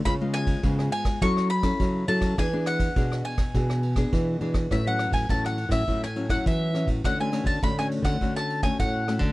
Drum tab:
RD |x-xxx-xxx-xxx-xx|x-xxx-xxx-xxx-xx|x-xxx-xxx-xxx-xx|x-xxx-xxx-xxx-xx|
SD |r-r--r-r-r-r---r|r-r--r-r-r-r---r|r-r--r-r-r-r--r-|r-r--r-r-r-r--r-|
BD |o--oo--oo--oo--o|o--oo--oo--oo--o|o--oo--oo--oo--o|o--oo--oo--oo--o|